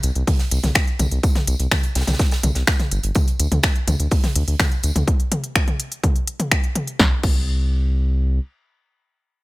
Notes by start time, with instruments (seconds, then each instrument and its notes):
0.03 analog synth bass C2, closed hi-hat, tambourine
0.15 analog synth bass C2, closed hi-hat
0.27 kick, closed hi-hat, open hi-hat, mid tom
0.39 snare, closed hi-hat
0.51 analog synth bass C2, closed hi-hat, tambourine
0.64 analog synth bass C2, snare, closed hi-hat, mid tom
0.75 finger snap, kick, snare, closed hi-hat, tambourine
0.88 closed hi-hat
0.99 analog synth bass C2, closed hi-hat, mid tom, tambourine
1.11 analog synth bass C2, closed hi-hat
1.23 kick, closed hi-hat, tambourine
1.35 snare, closed hi-hat, mid tom
1.47 analog synth bass C2, closed hi-hat, tambourine
1.59 analog synth bass C2, closed hi-hat
1.71 finger snap, kick, snare, closed hi-hat, mid tom, tambourine
1.83 closed hi-hat
1.95 analog synth bass C2, snare, closed hi-hat, tambourine
2.01 snare, tambourine
2.07 analog synth bass C2, snare, closed hi-hat, mid tom, tambourine
2.13 snare, tambourine
2.19 kick, snare, closed hi-hat, tambourine
2.31 snare, closed hi-hat, tambourine
2.43 analog synth bass C2, closed hi-hat, mid tom, tambourine
2.55 analog synth bass C2, snare, closed hi-hat
2.67 finger snap, kick, snare, closed hi-hat, tambourine
2.79 snare, closed hi-hat, mid tom
2.91 analog synth bass G1, closed hi-hat, tambourine
3.03 analog synth bass G1, closed hi-hat
3.15 kick, closed hi-hat, mid tom, tambourine
3.28 closed hi-hat
3.39 analog synth bass D2, closed hi-hat, tambourine
3.51 analog synth bass D2, closed hi-hat, mid tom
3.63 finger snap, kick, snare, closed hi-hat, tambourine
3.76 closed hi-hat
3.87 analog synth bass D2, closed hi-hat, mid tom, tambourine
4.00 analog synth bass D2, closed hi-hat
4.11 kick, closed hi-hat, open hi-hat
4.24 snare, closed hi-hat, mid tom
4.35 analog synth bass D2, closed hi-hat
4.48 analog synth bass D2, closed hi-hat
4.59 finger snap, kick, snare, closed hi-hat, mid tom, tambourine
4.72 closed hi-hat
4.83 analog synth bass D2, closed hi-hat, tambourine
4.95 analog synth bass D2, closed hi-hat, mid tom
5.07 kick, closed hi-hat
5.20 closed hi-hat
5.32 closed hi-hat, mid tom
5.44 closed hi-hat
5.55 finger snap, kick, closed hi-hat
5.68 closed hi-hat, mid tom
5.80 closed hi-hat
5.92 closed hi-hat
6.03 kick, closed hi-hat, mid tom
6.16 closed hi-hat
6.27 closed hi-hat
6.40 closed hi-hat, mid tom
6.51 finger snap, kick, closed hi-hat
6.64 closed hi-hat
6.75 closed hi-hat, mid tom
6.87 closed hi-hat
6.99 analog synth bass C2, kick, snare
7.23 analog synth bass C2, kick, crash